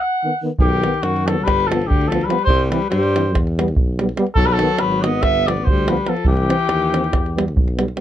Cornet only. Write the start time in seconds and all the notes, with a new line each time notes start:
0.00 F#5
0.61 G4
1.02 F#4
1.27 A4
1.44 B4
1.67 A4
1.87 G4
2.08 A4
2.25 B4
2.44 C5
2.64 C5
2.70 B4
2.90 C5
4.35 A4
4.46 B4
4.53 A4
4.80 B4
5.02 D#5
5.22 E5
5.47 D5
5.65 C5
5.89 B4
6.09 A4
6.28 G4